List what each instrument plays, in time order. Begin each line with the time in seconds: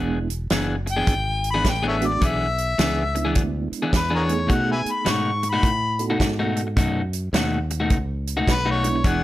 Already playing: fingered electric bass E1, clean electric guitar E3 B3 D4 G#4, reed electric piano G#3 B3 D4 E4
0.30 closed hi-hat
0.50 fingered electric bass F#1, clean electric guitar E3 B3 D4 G#4, snare, closed hi-hat
0.86 muted clean electric guitar stroke, closed hi-hat
0.92 harmonica G5
0.97 clean electric guitar E3 B3 D4 G#4
1.07 fingered electric bass G#1, kick, closed hi-hat
1.44 closed hi-hat
1.51 clean electric guitar G#4, harmonica B5
1.55 clean electric guitar E3 B3 D4
1.64 fingered electric bass A1, kick, snare, closed hi-hat
1.69 harmonica G5
1.83 clean electric guitar E3 B3 D4 G#4
1.88 harmonica A4 C#5 E5
2.01 reed electric piano G#3 B3 D4 F#4, closed hi-hat
2.07 harmonica D5
2.12 muted clean electric guitar stroke
2.21 fingered electric bass B1, clean electric guitar E3 B3 D4 G#4, kick, closed hi-hat
2.26 harmonica E5
2.58 closed hi-hat
2.78 fingered electric bass C#2, clean electric guitar E3 B3 D4 G#4, snare, closed hi-hat
3.15 reed electric piano G#3 B3 D4 E4, muted clean electric guitar stroke, closed hi-hat
3.25 clean electric guitar E3 B3 D4 G#4
3.35 fingered electric bass D2, kick, closed hi-hat
3.72 muted fingered electric bass stroke, closed hi-hat
3.82 clean electric guitar E3 B3 D4 G#4
3.93 fingered electric bass E2, harmonica B4, kick, snare, closed hi-hat
4.10 clean electric guitar E3 B3 D4 G#4
4.15 harmonica G#4 A#4 C#5
4.29 reed electric piano A3 B3 D#4 G#4, closed hi-hat
4.39 muted clean electric guitar stroke
4.47 clean electric guitar B2 A3 D#4 F#4, fingered electric bass B2, kick, closed hi-hat
4.54 harmonica F#5
4.72 harmonica B4 E5 G#5
4.86 muted fingered electric bass stroke, closed hi-hat
4.91 harmonica B5
5.05 fingered electric bass G#2, clean electric guitar B2 A3 D#4 F#4, snare, closed hi-hat
5.10 harmonica C#6
5.43 muted clean electric guitar stroke, closed hi-hat
5.49 clean electric guitar F#4, harmonica B5
5.54 clean electric guitar B2 A3 D#4
5.63 fingered electric bass A2, kick, closed hi-hat
5.99 reed electric piano B3 D#4 F#4 A4, closed hi-hat
6.10 clean electric guitar B2 A3 D#4 F#4
6.20 fingered electric bass G#2, kick, snare, closed hi-hat
6.39 clean electric guitar B2 A3 D#4 F#4
6.57 closed hi-hat
6.67 muted clean electric guitar stroke
6.76 fingered electric bass F#2, clean electric guitar B2 A3 D#4 F#4, kick, closed hi-hat
7.13 closed hi-hat
7.33 fingered electric bass D#2, clean electric guitar B2 A3 D#4 F#4, snare, closed hi-hat
7.70 muted clean electric guitar stroke, closed hi-hat
7.80 clean electric guitar B2 A3 D#4 F#4
7.90 fingered electric bass C#2, kick, closed hi-hat
8.27 closed hi-hat
8.37 clean electric guitar B2 A3 D#4 F#4
8.47 fingered electric bass B1, harmonica B4, kick, snare, closed hi-hat
8.66 clean electric guitar B2 A3 D#4 F#4
8.71 harmonica C#5
8.84 reed electric piano G#3 B3 D4 E4, closed hi-hat
8.95 muted clean electric guitar stroke
9.04 fingered electric bass E1, clean electric guitar E3 B3 D4 G#4, harmonica F#5, kick, closed hi-hat